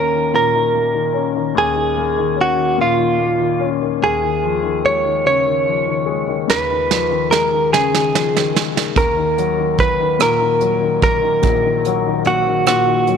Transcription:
Already playing: grand piano D#2 D#3 A#3 C#4, clean electric guitar A#4
0.15 grand piano D#3
0.34 grand piano A#2, clean electric guitar A#4
0.55 grand piano D#3
0.75 grand piano A#3
0.94 grand piano D#3
1.13 grand piano C#4
1.35 grand piano D#3
1.55 grand piano D#2, clean electric guitar G#4
1.75 grand piano D#3
1.96 grand piano A#3
2.18 grand piano D#3
2.36 grand piano C#4
2.41 clean electric guitar F#4
2.58 grand piano D#3
2.78 grand piano A#2, clean electric guitar F4
2.98 grand piano D#3
3.19 grand piano A#3
3.40 grand piano D#3
3.60 grand piano C#4
3.82 grand piano D#3
4.02 grand piano D#2, clean electric guitar G#4
4.22 grand piano D#3
4.43 grand piano F3
4.63 grand piano D#3
4.84 grand piano G#3, clean electric guitar C#5
5.06 grand piano D#3
5.26 grand piano C#3, clean electric guitar C#5
5.46 grand piano D#3
5.66 grand piano F3
5.87 grand piano D#3
6.06 grand piano G#3
6.28 grand piano D#3
6.48 grand piano D#2, clean electric guitar B4, snare
6.70 grand piano D#3
6.90 grand piano F3, snare
7.10 grand piano D#3
7.30 grand piano G#3, clean electric guitar A#4, snare
7.52 grand piano D#3
7.73 grand piano C#3, clean electric guitar G#4, snare
7.95 grand piano D#3, snare
8.14 grand piano F3, snare
8.34 grand piano D#3, snare
8.54 grand piano G#3, snare
8.75 grand piano D#3, snare
8.96 grand piano D#2, clean electric guitar A#4, kick, closed hi-hat
9.17 grand piano D#3
9.38 grand piano F#3, closed hi-hat
9.58 grand piano D#3
9.78 clean electric guitar B4, kick, closed hi-hat
10.00 grand piano D#3
10.19 grand piano A#2, clean electric guitar A#4, cross-stick, closed hi-hat
10.40 grand piano D#3
10.61 grand piano F#3, closed hi-hat
10.82 grand piano D#3
11.02 grand piano A#3, clean electric guitar A#4, kick, closed hi-hat
11.22 grand piano D#3
11.42 grand piano A#1, kick, closed hi-hat
11.64 grand piano D#3
11.85 grand piano F#3, closed hi-hat
12.06 grand piano D#3
12.25 grand piano A#3, clean electric guitar F#4, closed hi-hat
12.47 grand piano D#3
12.66 grand piano A#2, clean electric guitar F#4, cross-stick, closed hi-hat
12.87 grand piano D#3
13.07 grand piano F#3, closed hi-hat

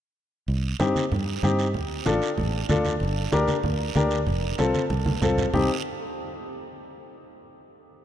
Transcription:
0.48 fingered electric bass C2, long guiro
0.79 fingered electric bass G2, upright piano C4 D#4 G4, high conga, short guiro
0.96 high conga, short guiro
1.12 fingered electric bass G2, high conga, low conga, long guiro
1.27 high conga
1.43 fingered electric bass G2, upright piano C4 D#4 G4, high conga, short guiro
1.59 short guiro
1.74 fingered electric bass D2, low conga, long guiro
2.06 fingered electric bass A1, upright piano D4 F4 A4, high conga, short guiro
2.22 short guiro
2.38 fingered electric bass A1, high conga, low conga, long guiro
2.53 high conga
2.69 fingered electric bass D2, upright piano D4 F4 A4, high conga, low conga, short guiro
2.85 high conga, short guiro
3.00 fingered electric bass G1, long guiro
3.32 fingered electric bass D2, upright piano D4 G4 A#4, high conga, short guiro
3.48 high conga, short guiro
3.63 fingered electric bass D2, high conga, low conga, long guiro
3.80 high conga
3.95 fingered electric bass D2, upright piano D4 G4 A#4, high conga, short guiro
4.11 short guiro
4.27 fingered electric bass F1, low conga, long guiro
4.58 fingered electric bass C2, upright piano C4 F4 A4, high conga, short guiro
4.74 high conga, short guiro
4.90 fingered electric bass C2, high conga, long guiro
5.06 high conga
5.22 fingered electric bass C2, upright piano C4 F4 A4, low conga, short guiro
5.38 low conga, short guiro
5.53 fingered electric bass C2, upright piano C4 D#4 G4, low conga, long guiro

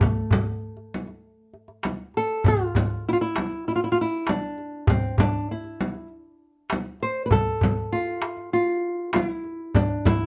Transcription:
Already playing: nylon-string guitar A3
0.01 darbuka dum, frame drum
0.31 darbuka dum, frame drum
0.46 darbuka ka
0.77 darbuka ka
0.94 frame drum
1.08 darbuka ka
1.54 darbuka ka
1.68 darbuka ka
1.83 darbuka tek, frame drum
2.14 nylon-string guitar A4, darbuka ka
2.44 nylon-string guitar F4, darbuka dum, frame drum
2.75 darbuka dum, frame drum
3.09 nylon-string guitar E4
3.13 nylon-string guitar F4
3.21 nylon-string guitar E4, darbuka ka
3.36 darbuka tek, frame drum
3.51 darbuka ka
3.68 nylon-string guitar E4
3.76 nylon-string guitar F4
3.84 nylon-string guitar E4
3.92 nylon-string guitar F4
4.01 nylon-string guitar E4
4.27 nylon-string guitar D4, darbuka tek, frame drum
4.58 darbuka ka
4.87 nylon-string guitar C4, darbuka dum, frame drum
5.18 nylon-string guitar D4, darbuka dum, frame drum
5.51 nylon-string guitar E4
5.64 darbuka ka
5.81 frame drum
5.95 darbuka ka
6.70 darbuka tek, frame drum
7.00 nylon-string guitar C5, darbuka ka
7.26 nylon-string guitar B4
7.31 nylon-string guitar A4, darbuka dum, frame drum
7.61 darbuka dum, frame drum
7.92 nylon-string guitar F4
8.07 darbuka ka
8.22 darbuka tek
8.37 darbuka ka
8.53 nylon-string guitar F4
9.13 nylon-string guitar F4, darbuka tek, frame drum
9.25 nylon-string guitar E4
9.44 darbuka ka
9.75 nylon-string guitar D4, darbuka dum, frame drum
10.05 nylon-string guitar E4, darbuka dum, frame drum
10.21 darbuka ka

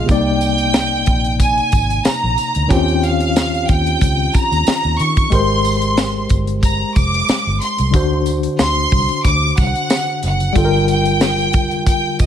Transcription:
Already playing: tine electric piano C#3 B3 F4 D#5
0.06 fingered electric bass C2, tine electric piano C3 A#3 D#4, kick, closed hi-hat, tambourine
0.10 tine electric piano D5, violin section G5
0.41 closed hi-hat, tambourine
0.58 closed hi-hat
0.74 snare, closed hi-hat, tambourine
1.06 fingered electric bass A#1, kick, closed hi-hat
1.24 closed hi-hat
1.39 violin section G#5, kick, closed hi-hat, tambourine
1.57 closed hi-hat
1.72 fingered electric bass G#1, kick, closed hi-hat, tambourine
1.90 closed hi-hat
2.05 violin section A#5, muted fingered electric bass stroke, snare, closed hi-hat, tambourine
2.23 fingered electric bass A#1
2.38 closed hi-hat, tambourine
2.55 fingered electric bass D2, closed hi-hat
2.68 fingered electric bass D#2, tine electric piano D#3 C#4 F4 G4, kick, closed hi-hat, tambourine
2.72 tine electric piano C4, violin section G5
2.88 closed hi-hat
3.03 violin section F5, closed hi-hat, tambourine
3.20 closed hi-hat
3.36 snare, closed hi-hat, tambourine
3.54 closed hi-hat
3.69 fingered electric bass D#2, violin section G5, kick, closed hi-hat, tambourine
3.87 closed hi-hat
4.01 fingered electric bass C#2, kick, closed hi-hat, tambourine
4.34 violin section A#5, muted fingered electric bass stroke, kick, closed hi-hat, tambourine
4.52 fingered electric bass D#2, closed hi-hat
4.67 muted fingered electric bass stroke, snare, closed hi-hat, tambourine
4.84 fingered electric bass D#2, closed hi-hat
4.99 fingered electric bass D#3, violin section C#6, closed hi-hat, tambourine
5.17 kick, closed hi-hat
5.30 fingered electric bass G#1, tine electric piano G#3 G4 A#4, kick, closed hi-hat
5.34 tine electric piano C5, violin section C6
5.65 closed hi-hat, tambourine
5.82 closed hi-hat
5.97 snare, closed hi-hat, tambourine
6.29 fingered electric bass G1, kick, closed hi-hat, tambourine
6.47 closed hi-hat
6.63 violin section A#5, kick, closed hi-hat, tambourine
6.96 fingered electric bass F1, violin section D6, kick, closed hi-hat, tambourine
7.14 closed hi-hat
7.29 muted fingered electric bass stroke, snare, closed hi-hat, tambourine
7.47 fingered electric bass G1
7.61 violin section C6, closed hi-hat, tambourine
7.78 fingered electric bass C2, closed hi-hat
7.91 fingered electric bass D2, tine electric piano D3 D4 F#4, kick, closed hi-hat, tambourine
7.96 tine electric piano C5
8.26 closed hi-hat, tambourine
8.43 closed hi-hat
8.59 fingered electric bass D2, violin section C6, snare, closed hi-hat, tambourine
8.91 fingered electric bass C2, kick, open hi-hat
9.09 closed hi-hat
9.25 fingered electric bass D2, violin section D6, kick, closed hi-hat, tambourine
9.57 fingered electric bass C2, violin section F#5, kick, closed hi-hat, tambourine
9.76 closed hi-hat
9.90 snare, closed hi-hat, tambourine
10.07 closed hi-hat
10.23 fingered electric bass F#1, violin section F#5, closed hi-hat, tambourine
10.40 closed hi-hat
10.53 fingered electric bass G1, tine electric piano D3 G3 F4, violin section G5, kick, closed hi-hat, tambourine
10.58 tine electric piano A4
10.65 tine electric piano A#4
10.88 violin section G5, closed hi-hat, tambourine
11.05 closed hi-hat
11.21 snare, closed hi-hat, tambourine
11.39 closed hi-hat
11.53 fingered electric bass F1, kick, closed hi-hat, tambourine
11.71 closed hi-hat
11.86 violin section G5, kick, closed hi-hat, tambourine
12.19 fingered electric bass F1, violin section D#5, kick, closed hi-hat, tambourine

